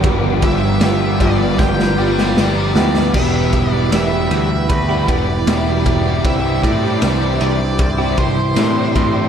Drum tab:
CC |----------------|x---------------|----------------|
RD |x-x-x-x---------|--x-x-x-x-x-x-x-|x-x-x-x-x-x-x-x-|
SD |----o---oo-oo-oo|----o-------o---|----o-------o---|
BD |o-o---o-o-------|o-o-----o-o---o-|o-o-----o-o---o-|